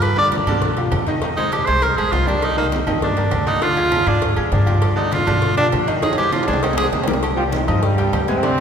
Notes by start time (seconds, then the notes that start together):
Already playing: G2 F3 F4 G4
0.02 B4, cowbell, high conga, low agogo
0.17 D3 D4 D5, high conga
0.32 cowbell, high conga, low timbale, low agogo
0.47 B2 D3 D4 D5, low conga, low agogo
0.62 cowbell, high conga, low conga
0.77 F3 F4 G4, cowbell, high conga, low agogo
0.92 F2, cowbell, high conga, low timbale, low agogo
1.07 D#3 D#4 D#5, cowbell, high conga
1.22 D#3 D#4 D#5, cowbell, high conga, low agogo
1.37 G#3 D#4 G#4 C5, high conga, low agogo
1.52 G4, cowbell, high conga, low timbale, low agogo
1.66 C2 G#3 G#4 C5, cowbell, high conga
1.82 A#4, cowbell, high conga, low agogo
1.97 A#1 G#3 G#4 C5, high conga, low agogo
2.12 C2 F4, cowbell, high conga, low timbale
2.27 G3 D4 G4 A#4, high conga, low agogo
2.42 D#4, cowbell, high conga, low agogo
2.57 D#3 A#3 D#4 D#5, high conga
2.72 cowbell, high conga, low timbale, low agogo
2.87 G2 D#3 D#4 D#5, low conga, low agogo
3.02 D4, cowbell, high conga, low conga
3.17 G3 G4 A#4, cowbell, high conga, low agogo
3.31 D2, cowbell, high conga, low timbale, low agogo
3.46 D3 D4 D#4 D5, cowbell, high conga
3.61 D3 D4 F4 D5, cowbell, high conga, low agogo
3.76 F3 F4 G#4, high conga, low agogo
3.92 cowbell, high conga, low timbale, low agogo
4.07 G#2 F3 D4 F4 G#4, cowbell, high conga
4.22 cowbell, high conga, low agogo
4.36 G#2 F3 F4 G#4, low agogo
4.52 G2 D4, cowbell, high conga, low timbale
4.66 F3 F4 G4, high conga, low agogo
4.82 cowbell, high conga, low agogo
4.96 D3 D4 D#4 D5, high conga
5.12 F4, cowbell, high conga, low timbale, low agogo
5.27 B2 D3 D4 D5, low conga, low agogo
5.42 cowbell, high conga
5.57 F3 D4 F4 G4, cowbell, high conga, low agogo
5.72 F2, cowbell, high conga, low timbale, low agogo
5.87 D#3 D#4 D#5, cowbell
6.02 D#3 D#4 G#4 D#5, cowbell, high conga, high timbale, low agogo
6.13 high timbale
6.17 G#3 G4 G#4 C5, high conga, low agogo
6.23 high timbale
6.32 F4, cowbell, high conga, high timbale, low agogo
6.43 D4, high timbale
6.47 C2 G#3 G#4 C5, cowbell, high conga
6.53 low timbale
6.62 D#4, cowbell, high conga, low timbale, low agogo
6.73 G#3 G#4, low timbale
6.77 G#4 C5, high bongo, high conga, low agogo
6.83 low timbale
6.92 C2, cowbell, high conga, low timbale
7.03 G3 A#4, high conga, low timbale
7.08 G4, low bongo, low agogo
7.13 low timbale
7.23 cowbell, high conga, low agogo
7.36 F3 G3 F4 G4 G5, high conga
7.52 D#3 D#4, cowbell, high conga, low timbale, low agogo
7.67 G2 F3 D#4 F4 D#5 D#6, low conga, low agogo
7.81 G2 G3, cowbell, high conga
7.98 G3 G4 G5, cowbell, high conga, low agogo
8.13 D2, cowbell, high conga, low timbale, low agogo
8.26 C3 G#3 C4 G#4 G#5, cowbell, high conga
8.43 D3 D4 D5, cowbell, high conga, low agogo